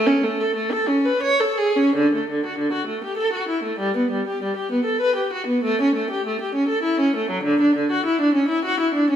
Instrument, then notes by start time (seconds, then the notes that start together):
viola
0.07 C#4
0.23 A3
0.40 A4
0.55 A3
0.72 A4
0.88 C#4
1.05 B4
1.22 C#5
1.40 A4
1.57 G#4
1.76 C#4
1.96 D3
2.15 A3
2.31 D3
2.46 F#4
2.59 D3
2.72 F#4
2.87 A3
3.04 G4
3.17 A4
3.33 F#4
3.48 E4
3.63 A3
3.79 G3
3.97 B3
4.11 G3
4.27 G4
4.43 G3
4.56 G4
4.72 B3
4.85 A4
5.01 B4
5.15 G4
5.33 F#4
5.46 B3
5.64 A3
5.81 C#4
5.95 A3
6.10 G4
6.26 A3
6.41 G4
6.55 C#4
6.69 A4
6.83 E4
7.00 C#4
7.16 A3
7.30 F#3
7.43 D3
7.62 D4
7.76 D3
7.91 F#4
8.06 E4
8.21 D4
8.34 C#4
8.48 E4
8.65 F#4
8.80 E4
8.94 D4
9.10 C#4